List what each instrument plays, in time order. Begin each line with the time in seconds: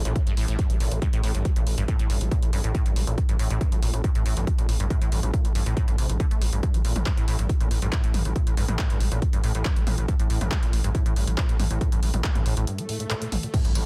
0.05 analog synth bass A1, acid bass A#2, closed hi-hat
0.16 acid bass A2, kick, closed hi-hat
0.27 analog synth bass A1, acid bass G2, closed hi-hat
0.37 analog synth bass A1, acid bass A2, open hi-hat
0.48 analog synth bass A1, acid bass A2, closed hi-hat
0.59 acid bass G2, kick, closed hi-hat
0.70 analog synth bass A1, acid bass A3, closed hi-hat
0.80 analog synth bass A1, acid bass A#2, open hi-hat
0.91 analog synth bass A1, acid bass A2, closed hi-hat
1.02 acid bass G2, kick, closed hi-hat
1.13 analog synth bass A1, acid bass A2, closed hi-hat
1.23 analog synth bass A1, acid bass A2, open hi-hat
1.35 analog synth bass A1, acid bass G2, closed hi-hat
1.45 acid bass A3, kick, closed hi-hat
1.56 analog synth bass A1, acid bass A#2, closed hi-hat
1.67 analog synth bass A1, acid bass A2, open hi-hat
1.78 analog synth bass A1, acid bass G2, closed hi-hat
1.88 acid bass A2, kick, closed hi-hat
1.99 analog synth bass A1, acid bass A2, closed hi-hat
2.10 analog synth bass A1, acid bass G2, open hi-hat
2.21 analog synth bass A1, acid bass A3, closed hi-hat
2.31 acid bass A#2, kick, closed hi-hat
2.43 analog synth bass A1, acid bass A2, closed hi-hat
2.53 analog synth bass A1, acid bass G2, open hi-hat
2.64 analog synth bass A1, acid bass A2, closed hi-hat
2.75 acid bass A2, kick, closed hi-hat
2.86 analog synth bass A1, acid bass G2, closed hi-hat
2.96 analog synth bass A1, acid bass A3, open hi-hat
3.07 analog synth bass A1, acid bass A#2, closed hi-hat
3.18 acid bass A2, kick, closed hi-hat
3.29 analog synth bass A1, acid bass G2, closed hi-hat
3.39 analog synth bass A1, acid bass A2, open hi-hat
3.50 analog synth bass A1, acid bass A2, closed hi-hat
3.61 acid bass G2, kick, closed hi-hat
3.72 analog synth bass A1, acid bass A3, closed hi-hat
3.82 analog synth bass A1, acid bass A#2, open hi-hat
3.94 analog synth bass A1, acid bass A2, closed hi-hat
4.04 acid bass G2, kick, closed hi-hat
4.15 analog synth bass A1, acid bass A2, closed hi-hat
4.26 analog synth bass A1, acid bass A2, open hi-hat
4.37 analog synth bass A1, acid bass G2, closed hi-hat
4.47 acid bass A3, kick, closed hi-hat
4.58 analog synth bass A1, acid bass A#2, closed hi-hat
4.69 analog synth bass A1, acid bass A2, open hi-hat
4.80 analog synth bass A1, acid bass G2, closed hi-hat
4.90 acid bass A2, kick, closed hi-hat
5.02 analog synth bass A1, acid bass A2, closed hi-hat
5.12 analog synth bass A1, acid bass G2, open hi-hat
5.23 analog synth bass A1, acid bass A3, closed hi-hat
5.34 acid bass A#2, kick, closed hi-hat
5.45 analog synth bass A1, acid bass A2, closed hi-hat
5.55 analog synth bass A1, acid bass G2, open hi-hat
5.66 analog synth bass A1, acid bass A2, closed hi-hat
5.77 acid bass A2, kick, closed hi-hat
5.88 analog synth bass A1, acid bass G2, closed hi-hat
5.98 analog synth bass A1, acid bass C3, open hi-hat
6.09 analog synth bass A1, acid bass G2, closed hi-hat
6.20 acid bass D3, kick, closed hi-hat
6.31 analog synth bass A1, acid bass A3, closed hi-hat
6.42 analog synth bass A1, acid bass E3, open hi-hat
6.53 analog synth bass A1, acid bass G2, closed hi-hat
6.63 kick, closed hi-hat
6.74 analog synth bass A1, acid bass A3, closed hi-hat
6.85 analog synth bass A1, acid bass A#2, open hi-hat
6.96 analog synth bass A1, acid bass A2, closed hi-hat, mid tom
7.06 acid bass G2, kick, clap, closed hi-hat
7.17 analog synth bass A1, acid bass A2, closed hi-hat
7.28 analog synth bass A1, acid bass A2, open hi-hat
7.39 analog synth bass A1, acid bass G2, closed hi-hat
7.49 acid bass A3, kick, closed hi-hat
7.61 analog synth bass A1, acid bass A#2, closed hi-hat
7.71 analog synth bass A1, acid bass A2, open hi-hat
7.82 analog synth bass A1, acid bass G2, closed hi-hat
7.93 acid bass A2, kick, clap, closed hi-hat
8.04 analog synth bass A1, acid bass A2, closed hi-hat
8.14 analog synth bass A1, acid bass G2, open hi-hat, mid tom
8.25 analog synth bass A1, acid bass A3, closed hi-hat
8.36 acid bass A#2, kick, closed hi-hat
8.47 analog synth bass A1, acid bass A2, closed hi-hat
8.57 analog synth bass A1, acid bass G2, open hi-hat
8.68 analog synth bass A1, acid bass A2, closed hi-hat, mid tom
8.79 acid bass A2, kick, clap, closed hi-hat
8.90 analog synth bass A1, acid bass G2, closed hi-hat
9.00 analog synth bass A1, acid bass A3, open hi-hat
9.12 analog synth bass A1, acid bass A#2, closed hi-hat
9.22 acid bass A2, kick, closed hi-hat
9.33 analog synth bass A1, acid bass G2, closed hi-hat
9.44 analog synth bass A1, acid bass A2, open hi-hat
9.55 analog synth bass A1, acid bass A2, closed hi-hat
9.65 acid bass G2, kick, clap, closed hi-hat
9.76 analog synth bass A1, acid bass A3, closed hi-hat
9.87 analog synth bass A1, acid bass A#2, open hi-hat, mid tom
9.98 analog synth bass A1, acid bass A2, closed hi-hat
10.08 acid bass G2, kick, closed hi-hat
10.19 analog synth bass A1, acid bass A2, closed hi-hat
10.30 analog synth bass A1, acid bass A2, open hi-hat
10.41 analog synth bass A1, acid bass G2, closed hi-hat, mid tom
10.51 acid bass A3, kick, clap, closed hi-hat
10.63 analog synth bass A1, acid bass A#2, closed hi-hat
10.73 analog synth bass A1, acid bass A2, open hi-hat
10.84 analog synth bass A1, acid bass G2, closed hi-hat
10.95 acid bass A2, kick, closed hi-hat
11.06 analog synth bass A1, acid bass A2, closed hi-hat
11.16 analog synth bass A1, acid bass G2, open hi-hat
11.27 analog synth bass A1, acid bass A3, closed hi-hat
11.38 acid bass A#2, kick, clap, closed hi-hat
11.49 analog synth bass A1, acid bass A2, closed hi-hat
11.60 analog synth bass A1, acid bass G2, open hi-hat, mid tom
11.71 analog synth bass A1, acid bass A2, closed hi-hat
11.81 acid bass A2, kick, closed hi-hat
11.92 analog synth bass A1, acid bass G2, closed hi-hat
12.03 analog synth bass A1, acid bass A3, open hi-hat
12.14 analog synth bass A1, acid bass A#2, closed hi-hat, mid tom
12.24 acid bass A2, kick, clap, closed hi-hat
12.35 analog synth bass A1, acid bass G2, closed hi-hat, mid tom
12.46 analog synth bass A1, acid bass A2, open hi-hat
12.57 analog synth bass A1, acid bass A2, closed hi-hat
12.67 acid bass G2, closed hi-hat, swell
12.78 acid bass A3, closed hi-hat
12.89 acid bass A2, open hi-hat
13.00 acid bass A2, closed hi-hat
13.11 acid bass A2, clap, closed hi-hat
13.22 acid bass A#2, closed hi-hat
13.32 acid bass A1, open hi-hat, mid tom
13.43 acid bass A#2, closed hi-hat
13.54 acid bass A2, kick, closed hi-hat, crash, tambourine, impact
13.65 analog synth bass A1, acid bass G2, closed hi-hat, tambourine
13.75 analog synth bass A1, acid bass A3, open hi-hat, tambourine